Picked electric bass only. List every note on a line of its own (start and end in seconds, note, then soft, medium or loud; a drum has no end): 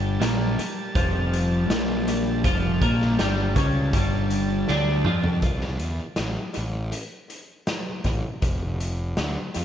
0.00 0.17 G1 loud
0.21 0.55 A#1 medium
0.59 muted picked electric bass stroke soft
0.95 1.66 F1 medium
1.72 2.41 A#1 medium
2.45 2.79 F1 medium
2.81 3.16 A#1 medium
3.20 3.54 G1 medium
3.56 3.91 C#2 medium
3.93 4.64 G1 medium
4.69 5.04 D2 medium
5.07 5.41 F2 medium
5.43 5.82 C2 medium
5.82 5.99 E2 medium
6.19 6.36 A1 medium
6.57 6.92 A1 medium
8.05 8.22 A1 medium
8.42 9.13 F1 medium
9.18 9.35 D2 medium
9.56 9.65 F2 medium